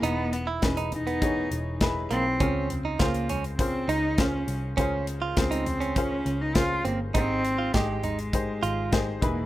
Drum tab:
HH |x-x-xxxxx-x-x-x-|x-x-xxxxx-x-x-x-|x-x-xxxxx-x-x-x-|x-x-x-xxx-x-x-x-|
SD |----o-------o---|----o-------o---|----o-------o---|----o-------o---|
FT |------o---------|--o---o---------|------o---------|------o---------|
BD |----o---o---o---|o---o---o---o---|o---o---o---o---|o---o---o---o-o-|